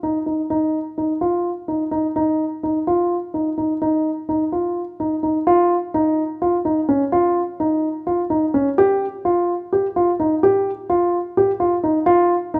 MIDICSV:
0, 0, Header, 1, 2, 480
1, 0, Start_track
1, 0, Key_signature, -3, "major"
1, 0, Tempo, 472069
1, 516, Time_signature, 7, 3, 24, 8
1, 12808, End_track
2, 0, Start_track
2, 0, Title_t, "Grand piano"
2, 0, Program_c, 0, 0
2, 32, Note_on_c, 0, 63, 54
2, 169, Note_off_c, 0, 63, 0
2, 267, Note_on_c, 0, 63, 47
2, 406, Note_off_c, 0, 63, 0
2, 511, Note_on_c, 0, 63, 64
2, 786, Note_off_c, 0, 63, 0
2, 993, Note_on_c, 0, 63, 54
2, 1132, Note_off_c, 0, 63, 0
2, 1232, Note_on_c, 0, 65, 59
2, 1508, Note_off_c, 0, 65, 0
2, 1710, Note_on_c, 0, 63, 48
2, 1850, Note_off_c, 0, 63, 0
2, 1946, Note_on_c, 0, 63, 58
2, 2087, Note_off_c, 0, 63, 0
2, 2195, Note_on_c, 0, 63, 67
2, 2471, Note_off_c, 0, 63, 0
2, 2678, Note_on_c, 0, 63, 57
2, 2817, Note_off_c, 0, 63, 0
2, 2921, Note_on_c, 0, 65, 61
2, 3196, Note_off_c, 0, 65, 0
2, 3396, Note_on_c, 0, 63, 49
2, 3536, Note_off_c, 0, 63, 0
2, 3637, Note_on_c, 0, 63, 57
2, 3777, Note_off_c, 0, 63, 0
2, 3880, Note_on_c, 0, 63, 69
2, 4156, Note_off_c, 0, 63, 0
2, 4360, Note_on_c, 0, 63, 58
2, 4499, Note_off_c, 0, 63, 0
2, 4600, Note_on_c, 0, 65, 54
2, 4876, Note_off_c, 0, 65, 0
2, 5083, Note_on_c, 0, 63, 54
2, 5222, Note_off_c, 0, 63, 0
2, 5318, Note_on_c, 0, 63, 58
2, 5458, Note_off_c, 0, 63, 0
2, 5560, Note_on_c, 0, 65, 75
2, 5836, Note_off_c, 0, 65, 0
2, 6043, Note_on_c, 0, 63, 67
2, 6318, Note_off_c, 0, 63, 0
2, 6525, Note_on_c, 0, 65, 61
2, 6663, Note_off_c, 0, 65, 0
2, 6762, Note_on_c, 0, 63, 60
2, 6901, Note_off_c, 0, 63, 0
2, 7002, Note_on_c, 0, 61, 63
2, 7141, Note_off_c, 0, 61, 0
2, 7243, Note_on_c, 0, 65, 76
2, 7517, Note_off_c, 0, 65, 0
2, 7727, Note_on_c, 0, 63, 63
2, 8000, Note_off_c, 0, 63, 0
2, 8203, Note_on_c, 0, 65, 61
2, 8341, Note_off_c, 0, 65, 0
2, 8440, Note_on_c, 0, 63, 67
2, 8579, Note_off_c, 0, 63, 0
2, 8684, Note_on_c, 0, 61, 69
2, 8822, Note_off_c, 0, 61, 0
2, 8928, Note_on_c, 0, 67, 84
2, 9200, Note_off_c, 0, 67, 0
2, 9405, Note_on_c, 0, 65, 66
2, 9678, Note_off_c, 0, 65, 0
2, 9889, Note_on_c, 0, 67, 64
2, 10024, Note_off_c, 0, 67, 0
2, 10129, Note_on_c, 0, 65, 66
2, 10264, Note_off_c, 0, 65, 0
2, 10367, Note_on_c, 0, 63, 68
2, 10502, Note_off_c, 0, 63, 0
2, 10607, Note_on_c, 0, 67, 80
2, 10877, Note_off_c, 0, 67, 0
2, 11079, Note_on_c, 0, 65, 68
2, 11351, Note_off_c, 0, 65, 0
2, 11564, Note_on_c, 0, 67, 67
2, 11698, Note_off_c, 0, 67, 0
2, 11794, Note_on_c, 0, 65, 64
2, 11931, Note_off_c, 0, 65, 0
2, 12034, Note_on_c, 0, 63, 63
2, 12170, Note_off_c, 0, 63, 0
2, 12264, Note_on_c, 0, 65, 82
2, 12539, Note_off_c, 0, 65, 0
2, 12752, Note_on_c, 0, 63, 71
2, 12808, Note_off_c, 0, 63, 0
2, 12808, End_track
0, 0, End_of_file